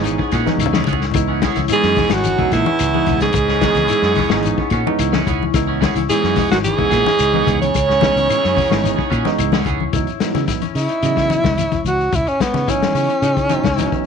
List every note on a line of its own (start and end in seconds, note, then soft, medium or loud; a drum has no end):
0.00 0.15 G#1 medium
0.00 0.42 G#2 medium
0.00 0.19 E3 medium
0.00 0.20 G#3 medium
0.00 0.42 G#3 medium
0.00 0.20 B3 medium
0.00 0.33 C#4 medium
0.00 0.20 D#4 loud
0.00 0.11 E4 medium
0.00 0.43 G#4 loud
0.00 closed hi-hat medium
0.05 0.66 D#4 medium
0.05 shekere medium
0.18 0.30 B3 soft
0.18 0.31 G#4 medium
0.18 muted clean electric guitar stroke medium
0.18 kick medium
0.31 0.44 A#2 medium
0.31 0.49 E3 medium
0.31 0.49 B3 medium
0.31 0.49 C#4 medium
0.31 0.74 C#4 medium
0.31 0.50 G#4 medium
0.31 kick medium
0.31 snare soft
0.31 closed hi-hat medium
0.31 claves medium
0.31 shekere soft
0.46 0.81 E3 medium
0.46 0.81 G#3 medium
0.46 0.81 B3 medium
0.46 0.81 D#4 loud
0.46 muted fingered electric bass stroke soft
0.46 snare soft
0.46 high conga loud
0.57 0.82 C#2 medium
0.57 1.14 E4 medium
0.57 closed hi-hat medium
0.57 high conga medium
0.57 claves medium
0.57 shekere medium
0.66 low conga loud
0.73 0.86 B3 soft
0.73 0.87 C#4 medium
0.73 1.27 C#4 medium
0.73 0.87 G#4 medium
0.73 snare medium
0.73 high conga loud
0.84 1.10 C#2 medium
0.84 1.04 E3 medium
0.84 1.04 B3 medium
0.84 1.05 C#4 medium
0.84 kick medium
0.84 closed hi-hat medium
0.84 low conga loud
0.88 1.05 G#4 medium
0.88 shekere soft
0.93 low conga medium
1.01 snare soft
1.11 1.49 C#2 medium
1.11 1.43 E3 medium
1.11 1.43 G#3 medium
1.11 1.43 B3 medium
1.11 1.55 E4 medium
1.11 kick loud
1.11 closed hi-hat medium
1.11 low conga medium
1.11 claves medium
1.15 1.43 D#4 medium
1.15 shekere medium
1.27 1.42 B3 medium
1.27 1.83 C#4 medium
1.27 1.43 C#4 medium
1.27 1.42 G#4 medium
1.42 1.59 E3 medium
1.42 1.60 B3 medium
1.42 1.60 C#4 medium
1.42 1.60 G#4 medium
1.42 kick medium
1.42 snare medium
1.42 closed hi-hat medium
1.42 high conga medium
1.42 shekere soft
1.56 1.68 C#2 medium
1.56 1.69 E4 medium
1.56 snare soft
1.56 closed hi-hat medium
1.56 high conga medium
1.68 2.05 E3 medium
1.68 2.05 G#3 medium
1.68 2.17 G#3 medium
1.68 2.05 B3 medium
1.68 2.05 D#4 medium
1.68 2.18 E4 medium
1.68 closed hi-hat medium
1.68 claves medium
1.68 shekere medium
1.73 2.13 G#2 medium
1.73 2.15 G#4 loud
1.83 1.95 F#2 medium
1.83 2.65 C#4 medium
1.83 1.97 C#4 medium
1.83 1.97 G#4 medium
1.83 snare soft
1.96 2.14 E3 medium
1.96 2.14 C#4 medium
1.96 2.14 G#4 medium
1.96 kick medium
1.96 open hi-hat medium
1.96 high conga medium
1.96 low conga medium
1.96 shekere soft
2.10 2.34 G#1 medium
2.10 2.52 F#2 medium
2.10 2.44 D#4 medium
2.10 snare medium
2.10 closed hi-hat medium
2.10 claves medium
2.14 2.53 F#3 medium
2.14 2.53 F#4 loud
2.24 closed hi-hat medium
2.24 high conga medium
2.24 shekere medium
2.38 2.66 E3 medium
2.38 2.67 G#3 medium
2.38 2.67 B3 medium
2.38 2.51 B3 soft
2.38 2.51 C#4 soft
2.38 2.67 D#4 medium
2.38 3.89 E4 medium
2.38 2.51 G#4 medium
2.38 kick medium
2.38 low conga medium
2.52 3.18 E2 medium
2.52 2.64 A#2 medium
2.52 2.69 E3 medium
2.52 3.18 E3 medium
2.52 2.69 B3 medium
2.52 2.69 C#4 medium
2.52 3.18 E4 medium
2.52 2.69 G#4 medium
2.52 kick medium
2.52 snare soft
2.52 closed hi-hat medium
2.52 claves medium
2.52 shekere soft
2.66 3.47 C#4 medium
2.66 muted fingered electric bass stroke soft
2.66 high conga loud
2.79 3.03 C#2 medium
2.79 closed hi-hat medium
2.79 claves medium
2.79 shekere medium
2.94 3.29 E3 medium
2.94 3.29 G#3 medium
2.94 3.06 B3 soft
2.94 3.29 B3 medium
2.94 3.07 C#4 medium
2.94 3.29 D#4 medium
2.94 3.07 G#4 medium
2.94 high conga medium
3.06 3.30 C#2 medium
3.06 3.24 E3 medium
3.06 3.24 B3 medium
3.06 3.24 C#4 medium
3.06 kick medium
3.06 closed hi-hat medium
3.06 low conga medium
3.06 shekere soft
3.20 4.82 G#2 medium
3.20 4.83 G#3 medium
3.20 4.82 G#4 loud
3.20 snare soft
3.20 closed hi-hat soft
3.20 high conga medium
3.33 3.69 C#2 medium
3.33 kick loud
3.33 closed hi-hat medium
3.33 claves medium
3.33 shekere medium
3.48 3.60 B3 soft
3.48 4.17 C#4 medium
3.48 3.61 C#4 medium
3.48 3.61 G#4 medium
3.48 snare soft
3.61 3.79 E3 medium
3.61 3.98 E3 medium
3.61 3.97 G#3 medium
3.61 3.79 B3 medium
3.61 3.98 B3 medium
3.61 3.79 C#4 medium
3.61 3.98 D#4 medium
3.61 3.79 G#4 medium
3.61 kick medium
3.61 snare medium
3.61 closed hi-hat medium
3.61 high conga medium
3.61 shekere soft
3.75 3.87 C#2 medium
3.75 snare soft
3.75 closed hi-hat medium
3.75 high conga medium
3.88 4.51 E4 medium
3.88 closed hi-hat medium
3.88 claves medium
3.88 shekere medium
4.02 4.14 F#2 medium
4.02 4.15 B3 medium
4.02 4.15 C#4 medium
4.02 4.15 G#4 medium
4.02 snare soft
4.16 4.33 E3 medium
4.16 4.33 B3 medium
4.16 4.33 C#4 medium
4.16 4.31 C#4 medium
4.16 4.34 G#4 medium
4.16 kick medium
4.16 open hi-hat medium
4.16 high conga medium
4.16 low conga medium
4.16 shekere soft
4.30 4.53 G#1 medium
4.30 4.60 E3 medium
4.30 4.60 G#3 medium
4.30 4.60 B3 medium
4.30 4.72 C#4 medium
4.30 4.60 D#4 loud
4.30 snare medium
4.30 claves medium
4.43 5.06 D#4 medium
4.43 closed hi-hat medium
4.43 high conga medium
4.43 shekere medium
4.58 4.71 B3 medium
4.58 4.71 C#4 medium
4.58 muted fingered electric bass stroke soft
4.58 muted clean electric guitar stroke medium
4.58 kick medium
4.70 4.83 A#2 medium
4.70 4.89 E3 medium
4.70 4.89 B3 medium
4.70 4.89 C#4 medium
4.70 5.14 C#4 medium
4.70 muted clean electric guitar stroke medium
4.70 kick medium
4.70 closed hi-hat medium
4.70 claves medium
4.70 shekere soft
4.87 5.21 E3 medium
4.87 5.21 G#3 medium
4.87 5.21 B3 medium
4.87 5.21 D#4 loud
4.87 muted fingered electric bass stroke soft
4.87 high conga loud
4.99 5.22 C#2 medium
4.99 5.54 E4 medium
4.99 closed hi-hat medium
4.99 claves medium
4.99 shekere medium
5.12 5.25 B3 soft
5.12 5.25 C#4 medium
5.12 5.68 C#4 medium
5.12 5.26 G#4 medium
5.12 snare medium
5.12 high conga medium
5.25 5.49 C#2 medium
5.25 5.43 E3 medium
5.25 5.43 B3 medium
5.25 5.43 C#4 medium
5.25 5.44 G#4 medium
5.25 kick medium
5.25 closed hi-hat medium
5.25 low conga medium
5.25 shekere soft
5.43 high conga medium
5.54 5.88 C#2 medium
5.54 5.83 E3 medium
5.54 5.82 G#3 medium
5.54 5.83 B3 medium
5.54 5.83 D#4 medium
5.54 5.96 E4 medium
5.54 kick medium
5.54 snare soft
5.54 closed hi-hat medium
5.54 claves medium
5.54 shekere medium
5.67 5.79 B3 soft
5.67 5.79 C#4 medium
5.67 6.23 C#4 medium
5.67 5.80 G#4 medium
5.80 5.98 E3 medium
5.80 5.98 B3 medium
5.80 5.98 C#4 medium
5.80 5.98 G#4 medium
5.80 kick medium
5.80 snare medium
5.80 closed hi-hat medium
5.80 high conga loud
5.80 shekere soft
5.96 6.07 C#2 loud
5.96 6.09 E4 medium
5.96 closed hi-hat medium
5.96 high conga medium
6.09 6.48 G#2 medium
6.09 6.45 E3 medium
6.09 6.49 G#3 medium
6.09 6.45 G#3 medium
6.09 6.45 B3 medium
6.09 6.45 C#4 medium
6.09 6.58 E4 medium
6.09 6.48 G#4 medium
6.09 closed hi-hat medium
6.09 claves medium
6.09 shekere medium
6.21 6.35 F#2 medium
6.21 6.35 B3 soft
6.21 6.35 C#4 soft
6.21 7.05 C#4 medium
6.21 6.35 G#4 medium
6.21 snare soft
6.35 6.53 E3 medium
6.35 6.53 B3 medium
6.35 6.53 C#4 medium
6.35 6.53 G#4 medium
6.35 kick medium
6.35 snare soft
6.35 open hi-hat medium
6.35 high conga medium
6.35 low conga medium
6.35 shekere soft
6.50 6.73 G#1 medium
6.50 6.59 F#2 medium
6.50 6.59 F#3 medium
6.50 6.84 D#4 medium
6.50 6.57 F#4 medium
6.50 snare medium
6.50 closed hi-hat medium
6.50 claves medium
6.64 7.58 G#2 medium
6.64 7.58 G#3 medium
6.64 7.57 G#4 loud
6.64 closed hi-hat medium
6.64 high conga medium
6.64 shekere medium
6.78 7.07 E3 medium
6.78 7.07 G#3 medium
6.78 6.89 B3 soft
6.78 7.07 B3 medium
6.78 6.89 C#4 medium
6.78 7.07 D#4 medium
6.78 8.29 E4 medium
6.78 6.89 G#4 medium
6.78 kick medium
6.78 low conga medium
6.90 7.03 A#2 medium
6.90 7.07 E3 medium
6.90 7.07 B3 medium
6.90 7.08 C#4 medium
6.90 7.08 G#4 medium
6.90 kick medium
6.90 snare soft
6.90 closed hi-hat medium
6.90 claves medium
6.90 shekere soft
7.06 7.88 C#4 medium
7.06 muted fingered electric bass stroke soft
7.06 snare soft
7.06 high conga loud
7.19 7.42 C#2 medium
7.19 closed hi-hat medium
7.19 claves medium
7.19 shekere medium
7.32 7.68 E3 medium
7.32 7.68 G#3 medium
7.32 7.45 B3 medium
7.32 7.68 B3 medium
7.32 7.46 C#4 medium
7.32 7.68 D#4 medium
7.32 7.45 G#4 medium
7.32 high conga medium
7.46 7.70 C#2 medium
7.46 7.63 E3 medium
7.46 7.63 B3 medium
7.46 7.63 C#4 medium
7.46 7.63 G#4 medium
7.46 kick medium
7.46 closed hi-hat medium
7.46 low conga medium
7.46 shekere soft
7.61 9.36 C#3 medium
7.61 9.35 C#5 loud
7.61 closed hi-hat medium
7.61 high conga medium
7.65 9.37 C#4 loud
7.75 8.09 C#2 loud
7.75 kick loud
7.75 closed hi-hat medium
7.75 claves medium
7.75 shekere medium
7.86 7.99 B3 soft
7.86 7.99 C#4 soft
7.86 8.56 C#4 medium
7.86 8.00 G#4 medium
7.86 snare soft
8.00 8.17 E3 medium
8.00 8.37 E3 medium
8.00 8.37 G#3 medium
8.00 8.17 B3 medium
8.00 8.37 B3 medium
8.00 8.18 C#4 medium
8.00 8.37 D#4 medium
8.00 8.18 G#4 medium
8.00 kick medium
8.00 snare medium
8.00 closed hi-hat medium
8.00 high conga medium
8.00 shekere soft
8.16 8.27 C#2 medium
8.16 snare soft
8.16 closed hi-hat soft
8.29 8.90 E4 medium
8.29 closed hi-hat medium
8.29 claves medium
8.29 shekere medium
8.41 8.55 F#2 medium
8.41 8.53 B3 medium
8.41 8.54 G#4 medium
8.41 snare soft
8.54 8.72 E3 medium
8.54 8.72 B3 medium
8.54 8.72 C#4 medium
8.54 8.70 C#4 medium
8.54 8.73 G#4 medium
8.54 kick medium
8.54 open hi-hat medium
8.54 high conga medium
8.54 low conga medium
8.54 shekere soft
8.70 8.93 G#1 medium
8.70 8.98 E3 medium
8.70 8.99 G#3 medium
8.70 8.99 B3 medium
8.70 9.09 C#4 medium
8.70 8.99 D#4 loud
8.70 snare medium
8.70 claves medium
8.84 9.44 D#4 medium
8.84 closed hi-hat medium
8.84 high conga medium
8.84 shekere medium
8.96 9.09 B3 medium
8.96 9.10 C#4 medium
8.96 9.10 G#4 medium
8.96 muted fingered electric bass stroke soft
8.96 kick medium
9.10 9.23 A#2 medium
9.10 9.28 E3 medium
9.10 9.28 B3 medium
9.10 9.53 C#4 medium
9.10 9.28 C#4 medium
9.10 9.28 G#4 medium
9.10 kick medium
9.10 closed hi-hat medium
9.10 claves medium
9.10 shekere soft
9.25 9.60 E3 medium
9.25 9.60 G#3 medium
9.25 9.61 B3 medium
9.25 9.60 D#4 loud
9.25 muted fingered electric bass stroke soft
9.25 snare soft
9.25 high conga loud
9.38 9.61 C#2 medium
9.38 9.92 E4 medium
9.38 closed hi-hat medium
9.38 claves medium
9.38 shekere medium
9.52 9.64 B3 medium
9.52 10.61 C#4 medium
9.52 9.65 C#4 medium
9.52 9.65 G#4 medium
9.52 snare medium
9.52 high conga medium
9.65 9.89 C#2 medium
9.65 9.82 E3 medium
9.65 9.82 B3 medium
9.65 9.83 C#4 medium
9.65 9.83 G#4 medium
9.65 kick medium
9.65 closed hi-hat medium
9.65 low conga medium
9.65 shekere soft
9.80 high conga medium
9.93 10.05 C#2 medium
9.93 10.08 E3 medium
9.93 10.08 F#3 medium
9.93 10.08 B3 medium
9.93 10.09 D#4 medium
9.93 10.34 E4 medium
9.93 kick medium
9.93 closed hi-hat medium
9.93 high conga soft
9.93 low conga medium
9.93 shekere medium
10.07 closed hi-hat soft
10.07 shekere soft
10.20 10.63 E3 medium
10.20 10.63 F#3 medium
10.20 10.63 B3 medium
10.20 10.64 D#4 medium
10.20 muted fingered electric bass stroke soft
10.20 snare medium
10.20 closed hi-hat medium
10.20 shekere medium
10.34 10.46 C#3 medium
10.34 10.47 E4 medium
10.34 snare soft
10.34 closed hi-hat soft
10.34 high conga medium
10.34 shekere soft
10.47 10.94 E4 medium
10.47 kick medium
10.47 snare soft
10.47 closed hi-hat medium
10.47 high conga soft
10.47 shekere medium
10.61 11.42 C#4 medium
10.61 muted fingered electric bass stroke soft
10.61 closed hi-hat soft
10.61 high conga medium
10.61 shekere soft
10.75 10.87 C#3 medium
10.75 11.82 E4 medium
10.75 open hi-hat medium
10.75 shekere medium
10.88 11.22 D#4 medium
10.88 closed hi-hat soft
10.88 shekere soft
11.03 11.37 C#3 medium
11.03 11.59 E3 medium
11.03 11.59 F#3 medium
11.03 11.59 B3 medium
11.03 11.60 D#5 medium
11.03 closed hi-hat medium
11.03 high conga soft
11.03 shekere medium
11.16 12.67 E4 medium
11.16 kick medium
11.16 snare soft
11.16 closed hi-hat soft
11.16 shekere soft
11.30 closed hi-hat medium
11.30 high conga medium
11.30 shekere medium
11.43 11.67 C#2 medium
11.43 12.25 C#4 medium
11.43 kick medium
11.43 snare medium
11.43 closed hi-hat soft
11.43 low conga medium
11.43 shekere soft
11.58 closed hi-hat medium
11.58 high conga medium
11.58 shekere medium
11.72 kick medium
11.72 closed hi-hat soft
11.72 high conga medium
11.72 low conga medium
11.72 shekere soft
11.84 12.08 C#2 medium
11.84 12.17 F#4 medium
11.84 closed hi-hat medium
11.84 high conga medium
11.84 shekere medium
12.00 shekere soft
12.12 12.25 C#2 medium
12.12 12.30 E4 medium
12.12 kick medium
12.12 closed hi-hat medium
12.12 high conga soft
12.12 low conga medium
12.12 shekere medium
12.26 12.94 C#4 medium
12.26 12.43 C#4 medium
12.26 closed hi-hat soft
12.26 shekere soft
12.40 12.71 B3 medium
12.40 muted fingered electric bass stroke soft
12.40 kick medium
12.40 snare medium
12.40 closed hi-hat soft
12.40 shekere medium
12.54 12.65 C#3 medium
12.54 12.62 B3 medium
12.54 12.62 D#4 medium
12.54 snare soft
12.54 high conga medium
12.54 shekere soft
12.67 13.11 E3 medium
12.67 13.11 F#3 medium
12.67 13.11 B3 medium
12.67 14.06 C#4 medium
12.67 13.11 D#4 medium
12.67 13.29 E4 medium
12.67 kick medium
12.67 closed hi-hat medium
12.67 high conga soft
12.67 shekere medium
12.81 muted fingered electric bass stroke soft
12.81 snare medium
12.81 closed hi-hat soft
12.81 high conga medium
12.81 shekere soft
12.94 13.07 C#3 medium
12.94 13.09 C#4 medium
12.94 open hi-hat medium
12.94 shekere medium
13.09 13.49 C#4 medium
13.09 closed hi-hat soft
13.09 shekere soft
13.22 13.57 C#3 loud
13.22 13.82 D#4 medium
13.22 closed hi-hat medium
13.22 high conga soft
13.22 shekere medium
13.37 kick medium
13.37 closed hi-hat soft
13.37 shekere soft
13.49 13.65 E3 medium
13.49 13.65 F#3 medium
13.49 13.65 B3 medium
13.49 13.91 C#4 medium
13.49 13.65 D#4 loud
13.49 closed hi-hat soft
13.49 high conga medium
13.49 shekere medium
13.64 13.87 C#2 medium
13.64 kick medium
13.64 snare medium
13.64 closed hi-hat soft
13.64 low conga medium
13.64 shekere soft
13.76 14.06 E3 medium
13.76 14.06 F#3 medium
13.76 14.06 B3 medium
13.76 14.06 D#4 loud
13.76 14.06 E4 medium
13.76 snare soft
13.76 closed hi-hat medium
13.76 high conga medium
13.76 shekere medium
13.92 14.06 C#4 medium
13.92 muted fingered electric bass stroke soft
13.92 kick medium
13.92 shekere soft